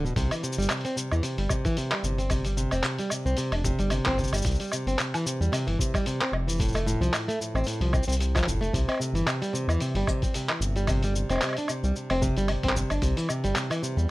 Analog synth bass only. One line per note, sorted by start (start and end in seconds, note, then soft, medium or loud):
0.00 0.11 D1 medium
0.16 0.28 C2 medium
0.58 0.67 G1 medium
1.12 1.21 E2 loud
1.38 1.47 G1 medium
2.03 2.67 G1 medium
2.72 2.81 F1 medium
3.25 3.35 C2 loud
3.51 3.72 F1 medium
3.79 4.00 G1 medium
4.06 4.27 G1 loud
4.32 4.42 G1 medium
4.45 4.57 C2 loud
4.86 4.96 G1 medium
5.40 5.50 E2 loud
5.67 5.76 G1 medium
6.32 6.96 F1 medium
7.00 7.10 C2 medium
7.54 7.64 A1 loud
7.80 8.01 C2 medium
8.08 8.43 C2 medium
8.47 8.59 F1 loud
8.60 8.70 F1 medium
8.73 8.85 C2 loud
9.13 9.23 G1 medium
9.68 9.77 E2 loud
9.94 10.04 G1 loud
10.60 11.24 G1 medium
11.29 11.39 F1 medium
11.83 11.92 C2 loud
12.10 12.30 F1 medium
12.37 12.57 G1 medium
12.63 12.84 G1 loud
12.91 13.00 G1 loud
13.02 13.14 C2 loud
13.44 13.53 G1 medium
13.97 14.06 E2 loud